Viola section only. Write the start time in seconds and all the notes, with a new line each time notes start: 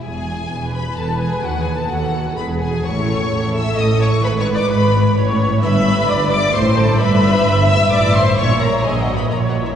0.51 B4
1.90 A4
2.36 G#4
2.85 A4
3.31 A4
4.23 B4
5.16 C#5
5.63 E5
6.09 D5
6.56 C5
7.00 E5
8.39 C#5
8.85 D#5
9.33 C#5